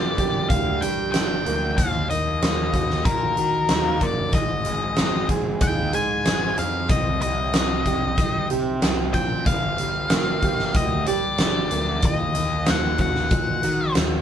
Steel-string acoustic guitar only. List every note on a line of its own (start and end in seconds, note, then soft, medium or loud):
0.00 0.82 G2 medium
0.00 1.14 G3 medium
0.00 1.45 A#3 medium
0.19 0.81 G4 medium
0.51 1.13 D4 medium
0.82 1.78 G4 medium
1.15 1.78 D4 medium
1.46 1.78 A#3 medium
1.78 2.09 D#3 medium
2.10 3.70 D#3 medium
2.43 4.01 A#3 medium
2.75 3.37 F#4 medium
3.07 3.70 D#4 medium
3.39 4.34 F#4 medium
3.71 5.61 D#4 medium
4.02 4.34 A#3 medium
4.34 5.94 G#2 medium
4.66 6.26 G#3 medium
4.98 6.57 C4 medium
5.30 5.92 G#4 medium
5.62 6.26 D#4 medium
5.93 6.90 G#4 medium
6.27 6.90 D#4 medium
6.58 6.90 C4 medium
6.90 8.50 C3 medium
7.22 8.83 G3 medium
7.55 9.14 C4 medium
7.86 8.49 G4 medium
8.19 8.82 D#4 medium
8.50 9.47 G4 medium
8.83 9.47 D#4 medium
9.16 9.47 C4 medium
9.47 11.07 G2 medium
9.80 11.40 G3 medium
10.12 11.70 A#3 medium
10.44 11.06 G4 medium
11.08 12.04 G4 medium
11.40 12.04 D4 medium
11.72 12.03 A#3 medium
12.04 12.35 D#3 medium
12.36 13.96 D#3 medium
12.68 14.21 A#3 medium
13.00 13.62 F#4 medium
13.32 13.94 D#4 medium
13.64 14.21 F#4 medium
13.95 14.21 D#4 medium